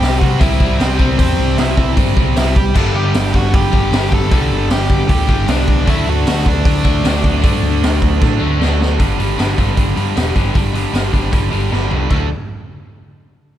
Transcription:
Already playing: overdriven electric guitar C3 G3 C4, lead electric guitar G4 G5
0.02 picked electric bass C2, snare, open hi-hat
0.19 picked electric bass C2, distorted electric guitar G3 C4, lead electric guitar F#4 F#5, kick
0.24 distorted electric guitar C3
0.39 picked electric bass C2, overdriven electric guitar C3 G3 C4, lead electric guitar E4 E5, kick, open hi-hat
0.59 picked electric bass C2, overdriven electric guitar C3 G3 C4, kick
0.79 picked electric bass C2, lead electric guitar C4 C5, snare, open hi-hat
0.98 overdriven electric guitar C3 G3 C4, kick
1.19 picked electric bass E2, lead electric guitar C4 C5, kick, open hi-hat
1.37 picked electric bass C2
1.58 picked electric bass C2, lead electric guitar E4 E5, snare, open hi-hat
1.77 distorted electric guitar C3 G3 C4, kick
1.96 picked electric bass G2, overdriven electric guitar C3 G3 C4, kick, open hi-hat
2.16 picked electric bass C2, overdriven electric guitar C3 G3 C4, kick
2.36 picked electric bass C2, lead electric guitar E4 E5, snare, open hi-hat
2.56 lead electric guitar G4 G5, kick
2.74 picked electric bass G1, overdriven electric guitar G2 D3 G3, lead electric guitar A4 A5, kick, crash
2.95 picked electric bass G1, lead electric guitar G4 G5
3.14 picked electric bass G1, snare, open hi-hat
3.34 picked electric bass G1, lead electric guitar F#4 F#5, kick
3.53 picked electric bass G1, distorted electric guitar G2 D3 G3, lead electric guitar G4 G5, kick, open hi-hat
3.72 picked electric bass G1, overdriven electric guitar G2 D3 G3, kick
3.91 picked electric bass G1, overdriven electric guitar G2 D3 G3, snare, open hi-hat
4.12 lead electric guitar A4 A5, kick
4.30 picked electric bass C2, overdriven electric guitar G2 D3 G3, kick, open hi-hat
4.50 picked electric bass G1
4.70 picked electric bass G1, lead electric guitar G4 G5, snare, open hi-hat
4.90 kick
5.08 picked electric bass D2, distorted electric guitar G2 D3 G3, lead electric guitar G4 G5, kick, open hi-hat
5.27 picked electric bass G1, overdriven electric guitar G2 D3 G3, kick
5.47 picked electric bass C2, overdriven electric guitar G2 D3 G3, lead electric guitar D4 D5, snare, open hi-hat
5.68 kick
5.86 picked electric bass D2, overdriven electric guitar D3 A3 D4, lead electric guitar E4, kick, open hi-hat
5.90 lead electric guitar E5
6.07 picked electric bass D2, lead electric guitar F#4 F#5
6.26 picked electric bass D2, lead electric guitar F#4 F#5, snare, open hi-hat
6.46 picked electric bass D2, lead electric guitar D4 D5, kick
6.64 picked electric bass D2, distorted electric guitar D3 A3 D4, kick, open hi-hat
6.83 picked electric bass D2, overdriven electric guitar D3 A3 D4, kick
7.03 picked electric bass D2, overdriven electric guitar D3 A3 D4, snare, open hi-hat
7.24 kick
7.42 picked electric bass G2, overdriven electric guitar D3 A3 D4, kick, open hi-hat
7.62 picked electric bass D2
7.82 picked electric bass D2, snare, open hi-hat
8.02 kick
8.20 picked electric bass A2, distorted electric guitar D3 A3 D4, kick, snare
8.39 picked electric bass D2, overdriven electric guitar D3 A3 D4
8.59 picked electric bass D2, overdriven electric guitar D3 A3 D4, snare
8.82 snare
8.99 picked electric bass G1, overdriven electric guitar G2 D3 G3, kick, open hi-hat
9.18 picked electric bass G1, overdriven electric guitar G2 D3 G3, open hi-hat
9.37 picked electric bass G1, overdriven electric guitar G2 D3 G3, snare, open hi-hat
9.57 picked electric bass G1, overdriven electric guitar G2 D3 G3, kick, open hi-hat
9.76 picked electric bass G1, overdriven electric guitar G2 D3 G3, kick, open hi-hat
9.95 overdriven electric guitar G2 D3 G3, picked electric bass G2, open hi-hat
10.15 picked electric bass E1, overdriven electric guitar G2 D3 G3, snare, open hi-hat
10.35 picked electric bass G1, overdriven electric guitar G2 D3 G3, kick, open hi-hat
10.54 picked electric bass G1, overdriven electric guitar G2 D3 G3, kick, open hi-hat
10.73 overdriven electric guitar G2 D3 G3, open hi-hat
10.92 picked electric bass G1, overdriven electric guitar G2 D3 G3, snare, open hi-hat
11.12 picked electric bass G1, overdriven electric guitar G2 D3 G3, kick, open hi-hat
11.31 picked electric bass G1, overdriven electric guitar G2 D3 G3, kick, open hi-hat
11.51 picked electric bass G1, overdriven electric guitar G2 D3 G3, open hi-hat
11.70 picked electric bass G1, overdriven electric guitar G2 D3 G3, snare
11.90 picked electric bass C2, overdriven electric guitar G2 D3 G3, floor tom
12.09 picked electric bass D2, overdriven electric guitar D3 A3 D4, kick, crash

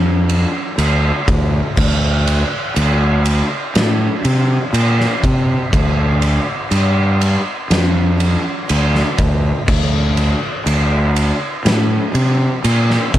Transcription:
Already playing: fingered electric bass F2
0.29 ride
0.78 fingered electric bass D2, ride
1.28 fingered electric bass D2, kick, ride
1.77 fingered electric bass D2, kick, crash
2.27 ride
2.76 fingered electric bass D2, ride
3.25 ride
3.75 fingered electric bass A2, snare, ride
4.25 fingered electric bass C3, ride
4.73 fingered electric bass A#2, ride
5.00 snare
5.24 fingered electric bass C3, kick, ride
5.73 fingered electric bass D2, kick, ride
6.22 ride
6.71 fingered electric bass G2, ride
7.21 ride
7.70 fingered electric bass F2, snare, ride
8.20 ride
8.69 fingered electric bass D2, ride
8.95 snare
9.18 fingered electric bass D2, kick, ride
9.68 fingered electric bass D2, kick, crash
10.17 ride
10.66 fingered electric bass D2, ride
11.16 ride
11.65 fingered electric bass A2, snare, ride
12.14 fingered electric bass C3, ride
12.64 fingered electric bass A#2, ride
12.90 snare
13.14 fingered electric bass C3, kick, ride

